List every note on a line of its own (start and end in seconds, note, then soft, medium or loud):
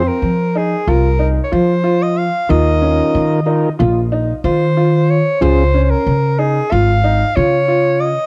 0.00 0.27 C4 medium
0.08 0.58 A#4 medium
0.22 0.72 F3 medium
0.55 0.74 D#4 medium
0.55 0.90 G#4 medium
0.87 1.37 C2 medium
0.87 1.06 F4 medium
0.87 1.27 A#4 medium
1.19 1.38 D#4 medium
1.44 1.55 C#5 medium
1.52 2.27 F3 medium
1.52 1.70 F4 medium
1.52 2.04 C5 loud
1.84 2.21 F4 medium
2.03 2.19 D#5 medium
2.18 2.52 F5 medium
2.49 3.00 D#2 medium
2.49 3.40 D#3 medium
2.49 3.40 D#4 medium
2.49 2.68 F4 medium
2.49 3.40 F4 soft
2.49 3.40 A#4 medium
2.49 3.80 D#5 loud
2.82 3.19 C#4 medium
3.15 3.65 D#3 medium
3.46 3.69 D#3 medium
3.46 3.69 D#4 medium
3.46 3.65 D#4 medium
3.46 3.69 F4 medium
3.46 3.69 A#4 medium
3.79 4.30 A#1 medium
3.79 3.98 F4 medium
4.12 4.30 D#4 medium
4.44 5.19 D#3 medium
4.44 4.63 F4 medium
4.44 5.11 C5 medium
4.77 5.14 F4 medium
5.10 5.43 C#5 medium
5.41 5.92 C#2 medium
5.41 5.64 C#3 medium
5.41 5.64 C#4 medium
5.41 5.64 F4 medium
5.41 5.60 F4 medium
5.41 5.64 G#4 medium
5.41 5.83 C5 loud
5.74 6.11 C#4 medium
5.83 5.92 C5 medium
5.90 6.40 A#4 medium
6.07 6.57 C#3 medium
6.39 6.57 D#4 medium
6.39 6.73 G#4 medium
6.71 7.22 G#1 medium
6.71 6.90 F4 medium
6.71 7.37 F5 loud
7.04 7.22 D#4 medium
7.36 8.12 C#3 medium
7.36 7.55 F4 medium
7.36 8.02 C#5 loud
7.68 8.05 F4 medium
8.01 8.26 D#5 medium